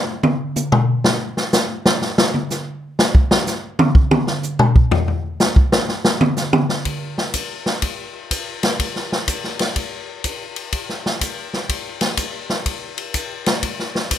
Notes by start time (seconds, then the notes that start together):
0.23 high tom
0.56 hi-hat pedal, high tom
0.72 mid tom
1.04 snare
1.37 snare
1.53 snare, hi-hat pedal
1.86 snare
2.02 snare
2.18 snare
2.34 high tom
2.50 snare, hi-hat pedal
2.99 snare
3.15 kick
3.31 snare
3.47 snare, hi-hat pedal
3.79 high tom
3.95 kick
4.11 high tom
4.27 snare
4.43 hi-hat pedal
4.59 mid tom
4.76 kick
4.91 floor tom
5.08 floor tom
5.40 snare, hi-hat pedal
5.56 kick
5.72 snare
5.89 snare
6.05 snare
6.21 high tom
6.36 snare, hi-hat pedal
6.53 high tom
6.69 snare
6.85 kick, ride
7.18 snare
7.34 kick, hi-hat pedal, ride
7.66 snare
7.82 kick, ride
8.31 kick, hi-hat pedal, ride
8.63 snare, ride
8.79 kick, ride
8.96 snare
9.12 snare
9.28 kick, hi-hat pedal, ride
9.44 snare
9.59 snare, ride
9.76 kick, ride
10.24 kick, hi-hat pedal, ride
10.56 ride
10.73 kick, ride
10.89 snare
11.06 snare
11.21 kick, hi-hat pedal, ride
11.54 snare
11.69 kick, ride
12.01 snare, ride
12.17 kick, hi-hat pedal, ride
12.50 snare
12.66 kick, ride
12.98 ride
13.14 kick, hi-hat pedal, ride
13.46 snare, ride
13.63 kick, ride
13.79 snare
13.95 snare
14.11 kick, hi-hat pedal, ride